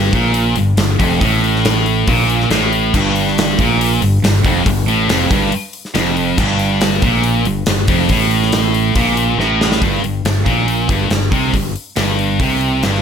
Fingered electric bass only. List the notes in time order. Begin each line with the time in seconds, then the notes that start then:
0.13 A#1
0.57 G1
0.77 G1
1.00 F1
1.21 A1
2.08 A#1
2.50 A1
2.94 G1
3.59 A#1
4.02 G1
4.22 G1
4.45 F1
4.66 G1
4.87 A1
5.08 F1
5.31 G1
5.96 F1
6.38 G1
7.02 A#1
7.45 G1
7.66 G1
7.88 F1
8.10 A1
8.95 A#1
9.38 A1
9.82 G1
10.03 G1
10.25 G1
10.46 A#1
10.89 G1
11.11 G1
11.32 C2
11.53 G1
11.97 G1
12.40 C2
12.83 G1